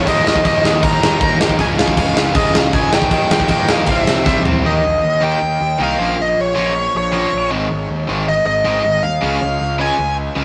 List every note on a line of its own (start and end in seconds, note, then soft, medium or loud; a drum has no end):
0.05 0.24 D#2 loud
0.05 0.42 D#3 medium
0.05 0.43 G3 loud
0.05 0.43 A#3 loud
0.05 0.44 D#4 loud
0.05 0.27 D#5 medium
0.05 kick loud
0.05 crash medium
0.26 0.43 D#2 medium
0.26 0.46 D#5 medium
0.26 snare loud
0.36 kick medium
0.43 0.62 D#2 loud
0.43 0.63 D#3 medium
0.43 0.63 G3 medium
0.43 0.63 A#3 loud
0.43 0.64 D#4 loud
0.43 0.85 D#5 loud
0.43 kick loud
0.43 crash medium
0.63 0.81 D#2 medium
0.63 0.82 D#3 medium
0.63 0.82 G3 medium
0.63 0.82 A#3 medium
0.63 0.83 D#4 medium
0.63 snare loud
0.83 1.01 D#2 medium
0.83 1.20 D#3 loud
0.83 1.21 G3 loud
0.83 1.21 A#3 loud
0.83 1.21 D#4 loud
0.83 1.37 A#5 loud
0.83 kick loud
0.83 crash medium
1.01 1.19 D#2 medium
1.01 snare loud
1.21 1.39 D#2 medium
1.21 1.39 D#3 medium
1.21 1.40 G3 medium
1.21 1.40 A#3 medium
1.21 1.41 D#4 medium
1.21 kick loud
1.21 crash medium
1.40 1.57 D#2 medium
1.40 1.58 D#3 medium
1.40 1.59 G3 medium
1.40 1.59 A#3 loud
1.40 1.59 D#4 loud
1.40 snare loud
1.49 kick medium
1.59 1.94 C#2 loud
1.59 1.96 C#3 loud
1.59 1.97 G#3 loud
1.59 1.97 C#4 loud
1.59 1.97 F4 loud
1.59 1.66 G#5 medium
1.59 kick medium
1.59 crash medium
1.79 2.37 F5 medium
1.79 snare loud
1.88 kick medium
1.97 2.15 C#2 loud
1.97 2.15 C#3 medium
1.97 2.16 G#3 medium
1.97 2.17 C#4 loud
1.97 2.17 F4 loud
1.97 kick loud
1.97 crash medium
2.16 2.34 C#2 medium
2.16 2.34 C#3 medium
2.16 2.35 G#3 loud
2.16 2.35 C#4 loud
2.16 2.36 F4 medium
2.16 snare loud
2.34 2.53 C#2 medium
2.34 2.73 C#3 loud
2.34 2.73 G#3 loud
2.34 2.74 C#4 loud
2.34 2.74 F4 loud
2.34 2.55 D#5 medium
2.34 kick loud
2.34 crash medium
2.55 2.72 C#2 medium
2.55 2.74 F5 medium
2.55 snare loud
2.73 2.91 C#2 loud
2.73 2.91 C#3 medium
2.73 2.92 G#3 medium
2.73 2.92 C#4 medium
2.73 2.93 F4 medium
2.73 2.94 G#5 medium
2.73 kick loud
2.73 crash medium
2.93 3.10 C#2 loud
2.93 3.11 C#3 loud
2.93 3.11 G#3 medium
2.93 3.11 C#4 medium
2.93 3.11 F4 medium
2.93 3.31 G5 loud
2.93 snare loud
3.02 kick medium
3.11 3.29 D#2 loud
3.11 3.49 D#3 loud
3.11 3.49 G3 loud
3.11 3.50 A#3 loud
3.11 3.50 D#4 loud
3.11 kick loud
3.11 crash medium
3.31 3.48 D#2 loud
3.31 3.71 G5 loud
3.31 snare loud
3.40 kick medium
3.48 3.67 D#2 loud
3.48 3.68 D#3 medium
3.48 3.69 G3 loud
3.48 3.69 A#3 medium
3.48 3.70 D#4 loud
3.48 kick medium
3.48 crash medium
3.69 3.87 D#2 medium
3.69 3.87 D#3 medium
3.69 3.87 G3 loud
3.69 3.88 A#3 medium
3.69 3.88 D#4 loud
3.69 3.90 F5 loud
3.69 snare loud
3.86 4.05 C2 medium
3.86 4.25 C3 loud
3.86 4.25 G3 loud
3.86 4.26 C4 loud
3.86 4.26 E4 loud
3.86 4.42 E5 medium
3.86 kick loud
3.86 crash medium
4.07 4.25 C2 medium
4.07 snare loud
4.26 4.44 C2 loud
4.26 4.46 C3 medium
4.26 4.46 G3 medium
4.26 4.46 C4 medium
4.26 4.46 E4 medium
4.26 kick loud
4.26 snare medium
4.45 4.63 C2 medium
4.45 4.64 C3 medium
4.45 4.64 G3 medium
4.45 4.65 C4 medium
4.45 4.65 E4 medium
4.45 floor tom loud
4.65 4.80 D#2 loud
4.65 4.80 D#3 medium
4.65 4.80 A#3 medium
4.65 4.81 D#4 medium
4.65 4.81 G4 loud
4.65 4.81 A#4 medium
4.65 5.25 D#5 medium
4.84 4.99 A#1 medium
5.03 5.33 D#2 loud
5.22 5.37 D#3 medium
5.22 5.38 A#3 medium
5.22 5.38 D#4 medium
5.22 5.38 G4 medium
5.22 5.39 A#4 loud
5.22 5.82 G5 loud
5.42 5.56 D#2 medium
5.61 5.75 D#2 medium
5.79 5.94 C2 medium
5.79 5.95 D#3 medium
5.79 5.95 A#3 medium
5.79 5.96 D#4 medium
5.79 5.96 G4 medium
5.79 5.96 A#4 medium
5.79 6.21 F5 medium
5.99 6.14 A#1 medium
5.99 6.14 A#2 medium
5.99 6.14 F3 medium
5.99 6.15 A#3 medium
5.99 6.15 C#4 medium
5.99 6.15 F4 loud
6.18 6.33 A#1 loud
6.18 6.41 D#5 medium
6.38 6.52 A#1 loud
6.38 6.96 C#5 medium
6.55 6.86 A#1 medium
6.55 6.71 A#2 medium
6.55 6.71 F3 loud
6.55 6.71 A#3 loud
6.55 6.71 C#4 loud
6.55 6.72 F4 loud
6.95 7.24 A#1 medium
6.95 7.49 C#5 medium
7.13 7.28 A#2 loud
7.13 7.28 F3 medium
7.13 7.28 A#3 medium
7.13 7.29 C#4 loud
7.13 7.29 F4 medium
7.33 7.47 A#1 medium
7.50 7.66 G#1 medium
7.50 7.66 G#2 medium
7.50 7.66 D#3 medium
7.50 7.67 G#3 loud
7.50 7.67 C4 medium
7.50 7.67 D#4 loud
7.71 7.85 G#1 medium
7.90 8.04 D#2 medium
8.08 8.38 G#1 medium
8.08 8.23 G#2 medium
8.08 8.23 D#3 loud
8.08 8.24 G#3 loud
8.08 8.24 C4 loud
8.08 8.24 D#4 loud
8.29 8.45 D#5 medium
8.46 8.61 G#1 medium
8.46 9.05 D#5 medium
8.65 8.80 G#1 medium
8.65 8.80 G#2 loud
8.65 8.81 D#3 medium
8.65 8.81 G#3 loud
8.65 8.81 C4 loud
8.65 8.81 D#4 loud
8.85 8.99 G#1 medium
9.03 9.18 D#2 medium
9.03 9.75 F5 loud
9.21 9.37 C#2 loud
9.21 9.37 C#3 medium
9.21 9.38 G#3 medium
9.21 9.38 C#4 loud
9.21 9.38 F4 loud
9.42 9.57 C#2 medium
9.61 9.90 C#2 loud
9.79 9.94 C#3 medium
9.79 9.95 G#3 medium
9.79 9.95 C#4 medium
9.79 9.95 F4 loud
9.79 10.16 G#5 medium
9.99 10.28 C#2 medium
10.36 10.45 C#2 medium
10.36 10.45 C#3 medium
10.36 10.45 G#3 medium
10.36 10.45 C#4 medium
10.36 10.45 F4 medium